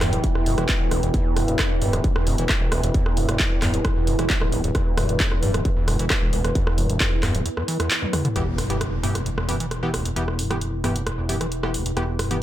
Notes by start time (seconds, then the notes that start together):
Already playing: E3 B3 E4 B4 G5
0.01 E2 G2, cross-stick, clap, open hi-hat
0.13 D1 E2, closed hi-hat
0.24 E2, kick, closed hi-hat
0.35 E2, cross-stick
0.46 E1 G2, open hi-hat
0.58 E1 E3, cross-stick, closed hi-hat
0.69 kick, clap, closed hi-hat
0.80 E1
0.91 E1 E2, cross-stick, open hi-hat
1.03 E1 E2, closed hi-hat
1.14 E2, kick, closed hi-hat
1.36 E1 G2, cross-stick, open hi-hat
1.48 E1, closed hi-hat
1.59 F2, kick, cross-stick, clap, closed hi-hat
1.71 E2
1.82 D1 G2, open hi-hat
1.93 D1 E2, cross-stick, closed hi-hat
2.04 E2, kick, closed hi-hat
2.16 E2, cross-stick
2.27 E1 G2, open hi-hat
2.38 E1 E3, closed hi-hat
2.49 kick, cross-stick, clap, closed hi-hat
2.61 E1
2.72 E1 E2, cross-stick, open hi-hat
2.83 E1 E2, closed hi-hat
2.94 E2, kick, closed hi-hat
3.06 cross-stick
3.17 E1 G2, open hi-hat
3.29 E1, cross-stick, closed hi-hat
3.40 F2, kick, clap, closed hi-hat
3.51 E2
3.62 E2 G2, cross-stick, clap, open hi-hat
3.74 D1 E2, closed hi-hat
3.85 E2, kick, cross-stick, closed hi-hat
3.96 E2
4.07 E1 G2, open hi-hat
4.19 E1 E3, cross-stick, closed hi-hat
4.30 kick, clap, closed hi-hat
4.41 D1 E1, cross-stick
4.52 D1 E2, open hi-hat
4.64 D1 E2, closed hi-hat
4.75 E2, kick, cross-stick, closed hi-hat
4.97 E1 G2, cross-stick, open hi-hat
5.09 E1, closed hi-hat
5.20 F2, kick, clap, closed hi-hat
5.32 E2, cross-stick
5.42 D1 G2, open hi-hat
5.54 D1 E2, cross-stick, closed hi-hat
5.65 E2, kick, closed hi-hat
5.77 E2
5.88 E1 G2, cross-stick, open hi-hat
5.99 E1 E3, closed hi-hat
6.10 kick, cross-stick, clap, closed hi-hat
6.22 E1
6.33 E1 E2, open hi-hat
6.44 E1 E2, cross-stick, closed hi-hat
6.55 E2, kick, closed hi-hat
6.67 cross-stick
6.78 E1 G2, open hi-hat
6.89 E1, closed hi-hat
7.00 F2, kick, cross-stick, clap, closed hi-hat
7.12 E2
7.23 E2 G2, cross-stick, clap, open hi-hat
7.35 D1 E2, closed hi-hat
7.46 E2, closed hi-hat
7.57 E2, cross-stick
7.68 E3, open hi-hat
7.80 E2, cross-stick, closed hi-hat
7.91 clap, closed hi-hat
8.02 F2, high tom
8.13 E2, cross-stick, open hi-hat, mid tom
8.25 D3, closed hi-hat, mid tom
8.36 E1 E2 E3 B3 E4 G4, closed hi-hat, impact
8.53 B4
8.58 G2, cross-stick, open hi-hat
8.70 E3 B3 G4, closed hi-hat
8.81 F2, cross-stick, closed hi-hat
8.92 E2
9.03 G2 E3 B3 G4 G5, open hi-hat
9.15 E2, cross-stick, closed hi-hat
9.26 E2, closed hi-hat
9.38 E2, cross-stick
9.49 G2 E3 B3 G4, open hi-hat
9.60 E3, closed hi-hat
9.71 cross-stick, closed hi-hat
9.83 E1 E3 B3 G4
9.94 E2, cross-stick, open hi-hat
10.05 E2, closed hi-hat
10.16 E2 E3 B3 G4, closed hi-hat
10.28 cross-stick
10.39 G2, open hi-hat
10.51 E3 B3 G4, cross-stick, closed hi-hat
10.61 F2, closed hi-hat
10.73 E2
10.84 G2 E3 B3 G4, cross-stick, open hi-hat
10.95 E2, closed hi-hat
11.06 E2, cross-stick, closed hi-hat
11.18 E2
11.29 G2 E3 B3 G4, open hi-hat
11.41 E3, cross-stick, closed hi-hat
11.52 closed hi-hat
11.63 E1 E3 B3 G4, cross-stick
11.74 E2, open hi-hat
11.86 E2, closed hi-hat
11.97 E2 E3 B3 G4, cross-stick, closed hi-hat
12.19 G2, cross-stick, open hi-hat
12.31 E3 B3 G4, closed hi-hat